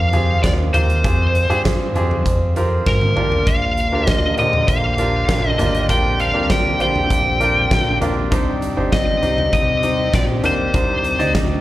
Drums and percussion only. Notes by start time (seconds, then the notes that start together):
0.13 closed hi-hat, floor tom
0.44 kick, snare, closed hi-hat
0.74 closed hi-hat, floor tom
0.90 closed hi-hat
1.04 kick, closed hi-hat
1.35 closed hi-hat
1.50 closed hi-hat
1.65 kick, snare, closed hi-hat
1.95 closed hi-hat
2.11 floor tom
2.26 kick, closed hi-hat
2.56 closed hi-hat
2.86 kick, snare
3.01 high tom
3.17 mid tom
3.32 floor tom
3.47 kick, closed hi-hat
3.77 closed hi-hat
4.07 kick, snare, closed hi-hat
4.38 closed hi-hat
4.53 floor tom
4.68 kick, closed hi-hat
4.98 closed hi-hat
5.29 kick, snare, closed hi-hat
5.59 closed hi-hat, floor tom
5.75 closed hi-hat
5.89 kick, closed hi-hat
6.20 closed hi-hat
6.50 kick, snare, closed hi-hat
6.80 closed hi-hat
6.96 floor tom
7.10 kick, closed hi-hat
7.41 closed hi-hat
7.71 kick, snare, closed hi-hat
8.02 closed hi-hat, floor tom
8.32 kick, closed hi-hat
8.62 closed hi-hat
8.92 kick, snare, closed hi-hat
9.23 closed hi-hat
9.38 floor tom
9.53 kick, closed hi-hat
9.83 closed hi-hat
10.13 kick, snare, closed hi-hat
10.44 closed hi-hat, floor tom
10.74 kick, closed hi-hat
11.04 closed hi-hat
11.20 closed hi-hat
11.35 kick, snare, closed hi-hat